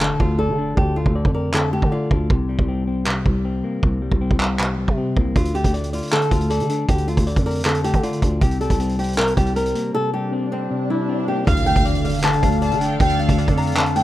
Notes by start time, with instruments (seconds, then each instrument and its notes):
Already playing: clean electric guitar A3 D5, impact
0.01 clean electric guitar D3, nylon-string guitar A4, clap
0.20 808-style bass D2, clean electric guitar A3, nylon-string guitar F4, kick
0.39 nylon-string guitar A4, clean electric guitar D5
0.49 808-style bass D3
0.58 clean electric guitar D4
0.77 808-style bass D2, clean electric guitar D3, nylon-string guitar G4, kick
0.96 clean electric guitar A3, nylon-string guitar F4
1.06 808-style bass D2, kick
1.15 clean electric guitar D5
1.25 808-style bass F2, kick
1.34 nylon-string guitar A#4, clean electric guitar D5
1.54 clean electric guitar D3, nylon-string guitar A4, clap
1.73 clean electric guitar A3, nylon-string guitar G4
1.82 808-style bass D3, kick
1.92 nylon-string guitar F4, clean electric guitar D5
2.11 808-style bass D2, clean electric guitar D4, kick
2.30 808-style bass C2, clean electric guitar C3, kick
2.49 clean electric guitar G3
2.59 808-style bass C2, kick
2.68 clean electric guitar C4
2.87 clean electric guitar C4
3.07 clean electric guitar C3, clap
3.26 808-style bass C2, clean electric guitar G3, kick
3.45 clean electric guitar C4
3.64 clean electric guitar A#3
3.83 808-style bass C2, clean electric guitar C3, kick
4.02 clean electric guitar G3
4.12 808-style bass C2, kick
4.21 clean electric guitar C4
4.31 808-style bass C2, kick
4.40 clean electric guitar C4, clap
4.59 clean electric guitar C3, clap
4.79 clean electric guitar G3
4.88 808-style bass C3, kick
4.98 clean electric guitar C4
5.17 808-style bass C2, clean electric guitar A#3, kick
5.36 808-style bass D2, clean electric guitar D3, nylon-string guitar F4, kick, closed hi-hat
5.45 closed hi-hat
5.55 clean electric guitar A3, nylon-string guitar G4, closed hi-hat
5.64 808-style bass D2, kick, closed hi-hat
5.74 clean electric guitar D5, closed hi-hat
5.84 closed hi-hat
5.93 nylon-string guitar F4, clean electric guitar D5, closed hi-hat
5.98 closed hi-hat
6.03 closed hi-hat
6.07 closed hi-hat
6.12 clean electric guitar D3, nylon-string guitar A4, clap, closed hi-hat
6.22 closed hi-hat
6.31 808-style bass D2, clean electric guitar A3, nylon-string guitar F4, kick, closed hi-hat
6.41 closed hi-hat
6.50 nylon-string guitar A4, clean electric guitar D5, closed hi-hat
6.60 808-style bass D3, closed hi-hat
6.70 clean electric guitar D4, closed hi-hat
6.89 808-style bass D2, clean electric guitar D3, nylon-string guitar G4, kick, closed hi-hat
6.98 closed hi-hat
7.08 clean electric guitar A3, nylon-string guitar F4, closed hi-hat
7.17 808-style bass D2, kick, closed hi-hat
7.27 clean electric guitar D5, closed hi-hat
7.36 808-style bass F2, kick, closed hi-hat
7.46 nylon-string guitar A#4, clean electric guitar D5, closed hi-hat, open hi-hat
7.51 closed hi-hat
7.55 closed hi-hat
7.60 closed hi-hat
7.65 clean electric guitar D3, nylon-string guitar A4, clap, closed hi-hat
7.75 closed hi-hat
7.84 clean electric guitar A3, nylon-string guitar G4, closed hi-hat
7.94 808-style bass D3, kick, closed hi-hat
8.03 nylon-string guitar F4, clean electric guitar D5, closed hi-hat
8.13 closed hi-hat
8.22 808-style bass D2, clean electric guitar D4, kick, closed hi-hat
8.41 808-style bass C2, clean electric guitar C3, nylon-string guitar G4, kick, closed hi-hat
8.51 closed hi-hat
8.61 clean electric guitar G3, nylon-string guitar A4, closed hi-hat
8.70 808-style bass C2, kick, closed hi-hat
8.80 clean electric guitar C4, closed hi-hat
8.89 closed hi-hat
8.99 clean electric guitar C4, nylon-string guitar G4, closed hi-hat
9.04 closed hi-hat
9.08 closed hi-hat
9.13 closed hi-hat
9.17 clean electric guitar C3, nylon-string guitar A#4, clap, closed hi-hat
9.27 closed hi-hat
9.37 808-style bass C2, clean electric guitar G3, nylon-string guitar G4, kick, closed hi-hat
9.46 closed hi-hat
9.56 clean electric guitar C4, nylon-string guitar A#4, closed hi-hat
9.66 closed hi-hat
9.75 clean electric guitar A#3, closed hi-hat
9.94 clean electric guitar C3, nylon-string guitar A4, swell
10.13 clean electric guitar G3, nylon-string guitar G4
10.33 clean electric guitar C4
10.52 clean electric guitar C4, nylon-string guitar C4
10.71 clean electric guitar C3
10.90 clean electric guitar G3, nylon-string guitar E4
11.09 clean electric guitar C4
11.28 clean electric guitar A#3, nylon-string guitar G4
11.47 808-style bass D2, clean electric guitar D3, analog synth pad D3 D4 A4 F5, nylon-string guitar F5, violin section F5, kick, closed hi-hat, impact
11.57 closed hi-hat
11.66 clean electric guitar A3, nylon-string guitar G5, closed hi-hat
11.76 808-style bass D2, kick, closed hi-hat
11.85 clean electric guitar D5, closed hi-hat
11.95 closed hi-hat
12.04 clean electric guitar D5, nylon-string guitar F5, closed hi-hat
12.09 closed hi-hat
12.14 closed hi-hat
12.19 closed hi-hat
12.24 clean electric guitar D3, nylon-string guitar A5, clap, closed hi-hat
12.33 closed hi-hat
12.43 808-style bass D2, clean electric guitar A3, nylon-string guitar F5, kick, closed hi-hat
12.52 closed hi-hat
12.62 clean electric guitar D5, nylon-string guitar A5, violin section A5, closed hi-hat
12.71 808-style bass D3, closed hi-hat
12.81 clean electric guitar D4, violin section G5, closed hi-hat
13.00 808-style bass D2, clean electric guitar D3, violin section F5, nylon-string guitar G5, kick, closed hi-hat
13.10 closed hi-hat
13.19 clean electric guitar A3, nylon-string guitar F5, closed hi-hat
13.29 808-style bass D2, kick, closed hi-hat
13.38 clean electric guitar D5, closed hi-hat
13.48 808-style bass F2, kick, closed hi-hat
13.57 clean electric guitar D5, nylon-string guitar A#5, closed hi-hat, open hi-hat
13.62 closed hi-hat
13.67 closed hi-hat
13.72 closed hi-hat
13.76 clean electric guitar D3, nylon-string guitar A5, clap, closed hi-hat
13.86 closed hi-hat
13.96 clean electric guitar A3, violin section G5, nylon-string guitar G5, closed hi-hat